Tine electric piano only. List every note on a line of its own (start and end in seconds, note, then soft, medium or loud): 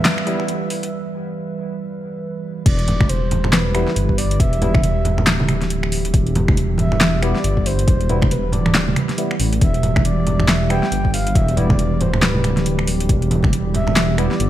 0.27 0.42 G3 medium
0.27 0.42 B3 medium
0.27 0.42 E4 loud
3.75 3.90 G3 medium
3.75 3.90 B3 medium
3.75 3.90 E4 loud
4.62 4.72 G3 medium
4.62 4.72 B3 medium
4.62 4.72 E4 loud
7.23 7.38 G3 medium
7.23 7.38 B3 medium
7.23 7.38 E4 loud
8.09 8.20 G3 medium
8.09 8.19 B3 medium
8.09 8.19 E4 medium
9.18 9.33 G3 medium
9.18 9.33 B3 medium
9.18 9.33 E4 medium
10.70 10.85 G3 medium
10.70 10.85 B3 medium
10.70 10.85 E4 loud
11.57 11.67 G3 medium
11.57 11.67 B3 medium
11.57 11.67 E4 loud
14.18 14.33 G3 medium
14.18 14.33 B3 medium
14.18 14.33 E4 loud